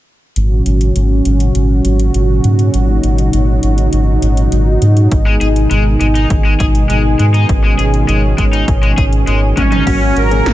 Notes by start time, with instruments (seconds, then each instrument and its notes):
0.36 analog synth bass G#1, analog synth pad A#2 C#3 F#3 C#4 F#4, closed hi-hat
0.66 analog synth bass G#1, closed hi-hat
0.81 closed hi-hat
0.96 analog synth bass G#1, closed hi-hat
1.25 analog synth bass G#1, closed hi-hat
1.40 closed hi-hat
1.55 analog synth bass G#1, closed hi-hat
1.85 analog synth bass G#1, closed hi-hat
2.00 closed hi-hat
2.14 analog synth bass G#1, closed hi-hat
2.44 analog synth bass G#2, closed hi-hat
2.59 closed hi-hat
2.74 analog synth bass G#1, analog synth pad D#4, closed hi-hat
3.03 analog synth bass G#1, closed hi-hat
3.18 closed hi-hat
3.33 analog synth bass G#1, closed hi-hat
3.63 analog synth bass G#1, closed hi-hat
3.78 closed hi-hat
3.93 analog synth bass G#1, closed hi-hat
4.22 analog synth bass G#1, closed hi-hat
4.37 closed hi-hat
4.52 analog synth bass G#1, closed hi-hat
4.82 analog synth bass G#2, closed hi-hat
4.97 closed hi-hat
5.11 analog synth bass G#1, analog synth pad B2 D#3 G#3 G#4, kick, closed hi-hat
5.26 overdriven electric guitar G#3
5.41 analog synth bass G#1, overdriven electric guitar G#4, closed hi-hat
5.56 closed hi-hat
5.71 analog synth bass G#1, overdriven electric guitar G#3, closed hi-hat
6.01 analog synth bass G#1, overdriven electric guitar G#3, closed hi-hat
6.15 overdriven electric guitar D#4, closed hi-hat
6.30 analog synth bass G#1, kick, closed hi-hat
6.45 overdriven electric guitar G#3
6.60 analog synth bass G#1, overdriven electric guitar G#4, kick, closed hi-hat
6.75 closed hi-hat
6.90 analog synth bass G#1, overdriven electric guitar G#3, closed hi-hat
7.19 analog synth bass G#2, overdriven electric guitar G#3, closed hi-hat
7.34 overdriven electric guitar D#4, closed hi-hat
7.49 analog synth bass G#1, analog synth pad C#4, kick, closed hi-hat
7.64 overdriven electric guitar G#3
7.79 analog synth bass G#1, overdriven electric guitar G#4, closed hi-hat
7.94 closed hi-hat
8.08 analog synth bass G#1, overdriven electric guitar G#3, closed hi-hat
8.38 analog synth bass G#1, overdriven electric guitar G#3, kick, closed hi-hat
8.53 overdriven electric guitar D#4, closed hi-hat
8.68 analog synth bass G#1, kick, closed hi-hat
8.83 overdriven electric guitar G#3, closed hi-hat
8.98 analog synth bass G#1, overdriven electric guitar G#4, kick, closed hi-hat
9.13 closed hi-hat
9.27 analog synth bass G#1, overdriven electric guitar G#3, closed hi-hat
9.57 analog synth bass G#1, overdriven electric guitar G#3, supersaw synth C#4, kick, closed hi-hat, high tom
9.72 overdriven electric guitar D#4, closed hi-hat, mid tom
9.87 analog synth bass G#1, analog synth pad A#2 C#3 F#3 C#4 F#4, fm electric piano F#3 A#3 C#4 F#4, kick, closed hi-hat, crash
10.16 analog synth bass G#1, supersaw synth A#4, closed hi-hat
10.31 fm electric piano F#3 A#3 C#4 G#4, closed hi-hat
10.46 analog synth bass G#1, snare, closed hi-hat